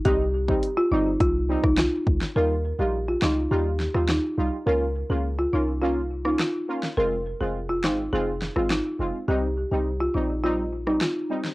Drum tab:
HH |x---x---x---x---|----------------|----------------|----------------|
CP |------------x---|------x-----x---|------------x---|------x-----x---|
SD |-----------ro--o|------o---oro---|-----------ro--o|------o---oro---|
BD |o--o----o--o--o-|----------------|----------------|----------------|

HH |----------------|
CP |------------x---|
SD |-----------ro--o|
BD |----------------|